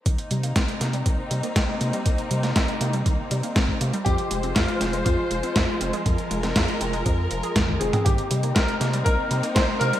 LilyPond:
<<
  \new Staff \with { instrumentName = "Grand piano" } { \time 4/4 \key c \phrygian \tempo 4 = 120 r1 | r1 | g'4 f'4 f'2~ | f'2. r8 aes'8 |
g'4 bes'4 bes'4 c''8 bes'8 | }
  \new Staff \with { instrumentName = "String section" } { \time 4/4 \key c \phrygian << { ees'1~ | ees'1 | c''1 | bes'1 |
ees'1 | } \\ { <bes c'>1~ | <bes c'>1 | <f aes f'>1~ | <f aes f'>1 |
<bes c'>1 | } >> }
  \new Staff \with { instrumentName = "Synth arpeggio sound" } { \time 4/4 \key c \phrygian ees16 r16 g16 bes16 c'16 r16 bes16 g16 ees16 r16 g16 bes16 c'16 r16 bes16 g16 | ees16 r16 g16 bes16 c'16 r16 bes16 g16 ees16 r16 g16 bes16 c'16 r16 bes16 g16 | f16 r16 aes16 c'16 f'16 r16 c'16 aes16 f16 r16 aes16 c'16 f'16 r16 c'16 aes16 | f16 r16 aes16 c'16 f'16 r16 c'16 aes16 f16 r16 f16 aes'16 aes16 r16 c'16 c'16 |
ees16 r16 g16 bes16 c'16 r16 bes16 g16 ees16 r16 g16 bes16 c'16 r16 bes16 g16 | }
  \new Staff \with { instrumentName = "Analog synth bass" } { \clef bass \time 4/4 \key c \phrygian c,8 c8 c,8 c8 c,8 c8 c,8 c8 | c,8 c8 c,8 c8 c,8 c8 c,8 c8 | f,8 f,,8 f,8 f,,8 f,8 f,,8 f,8 f,,8 | f,8 f,,8 f,8 f,,8 f,8 f,,8 f,8 f,,8 |
c,8 c8 c,8 c8 c,8 c8 c,8 c8 | }
  \new DrumStaff \with { instrumentName = "Drums" } \drummode { \time 4/4 <hh bd>16 hh16 hh16 hh16 <hh bd sn>16 hh16 <hh sn>16 hh16 <hh bd>8 hh16 hh16 <hh bd sn>8 hh16 hh16 | <hh bd>16 hh16 hh16 <hh sn>16 <hh bd sn>16 hh16 hh16 hh16 <hh bd>8 hh16 hh16 <hh bd sn>16 bd16 hh16 hh16 | <hh bd>16 hh16 hh16 hh16 <hh bd sn>16 hh16 <hh sn>16 hh16 <hh bd>8 hh16 hh16 <hh bd sn>8 hh16 hh16 | <hh bd>16 hh16 hh16 <hh sn>16 <hh bd sn>16 hh16 hh16 hh16 <hh bd>8 hh16 hh16 <hh bd sn tommh>16 <bd tommh>16 hh16 <hh toml>16 |
<hh bd>16 hh16 hh16 hh16 <hh bd sn>16 hh16 <hh sn>16 hh16 <hh bd>8 hh16 hh16 <hh bd sn>8 hh16 hh16 | }
>>